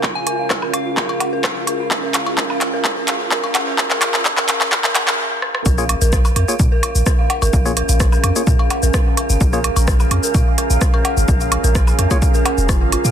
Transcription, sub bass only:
X:1
M:4/4
L:1/16
Q:1/4=128
K:Bbm
V:1 name="Sub bass" clef=bass
B,,,2 z B,,,2 z F,, z B,, z2 B,,, z B,, z2 | B,,,2 z B,,,2 z F,, z B,, z2 B,,, z B,, z2 | B,,,2 z B,,,2 z F,, z B,, z2 B,,, z4 | B,,,2 z B,,,2 z F,, z B,, z2 B,,, z3 A,,, |
B,,,2 z B,,,2 z F,, z B,, z2 B,,, z3 A,,, | B,,,2 z B,,,2 z F,, z B,, z2 B,,, z3 A,,, | B,,,2 z B,,,2 z F,, z4 F,,,2 A,,, z B,, |]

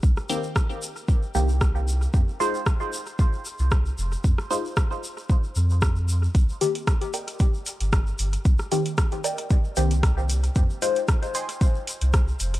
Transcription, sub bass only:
X:1
M:4/4
L:1/16
Q:"Swing 16ths" 1/4=114
K:Fdor
V:1 name="Sub bass" clef=bass
C,, z8 z C,,4- C,, z | F,, z8 z2 C,,2 z F,,, z | F,, z8 z F,,4- F,, z | C,, z8 z2 G,,,2 z G,,, z |
C,, z8 z C,,4- C,, z | F,, z8 z2 C,,2 z F,,, z |]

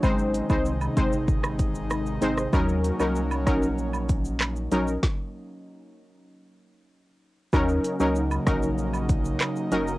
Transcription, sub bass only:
X:1
M:4/4
L:1/16
Q:1/4=96
K:Ebdor
V:1 name="Sub bass" clef=bass
A,,,3 C,,3 A,,,8 A,,,2 | E,,3 C,,3 B,,,8 B,,,2 | z16 | E,,2 z D,,3 B,,,6 z2 G,,,2 |]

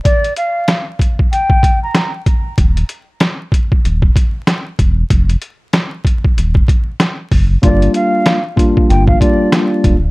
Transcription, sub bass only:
X:1
M:4/4
L:1/8
Q:"Swing 16ths" 1/4=95
K:Gm
V:1 name="Sub bass" clef=bass
z8 | E,,, z3 E,,, z2 =E,,, | F,,, z3 E,,, z2 _G,,, | G,,, z3 G,,, z2 D,,, |]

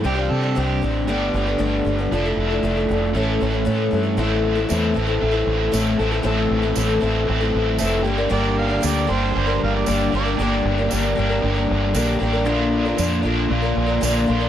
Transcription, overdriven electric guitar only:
X:1
M:4/4
L:1/8
Q:1/4=116
K:Am
V:1 name="Overdriven electric guitar"
[C,G,CDG]4 [G,,D,G,B,DG]4 | [F,A,DA]4 [A,,E,A,^CA]4 | [K:Aphr] [A,,E,CEA]2 [E,CEA] [CEA] [A,,E,CEA]2 [E,CEA] [CEA] | [A,,E,CEA]2 [E,CEA] [CEA] [A,,E,CEA]2 [E,CEA] [G,,D,G,B,DG] |
[G,,D,G,B,DG]2 [G,B,DG] [G,B,DG] [G,,D,G,B,DG]2 [G,B,DG] [G,B,DG] | [G,,D,G,B,DG]2 [G,B,DG] [G,B,DG] [G,,D,G,B,DG]2 [G,B,DG] [G,B,DG] | [B,,D,B,DF]2 [D,B,DF] [B,DF] [B,,D,B,DF]2 [D,B,DF] [B,DF] |]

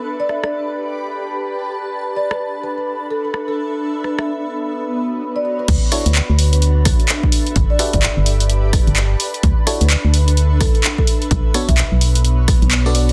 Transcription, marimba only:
X:1
M:4/4
L:1/16
Q:"Swing 16ths" 1/4=128
K:D
V:1 name="Marimba"
z d e d6 z6 z | z2 d B2 z B B z2 A A z A2 z | z2 B e2 z8 d d B | z2 d B2 z B B z8 |
z d e d6 z6 z | z2 d B2 z B B z2 A A z A2 z | z2 B e2 z8 d d B |]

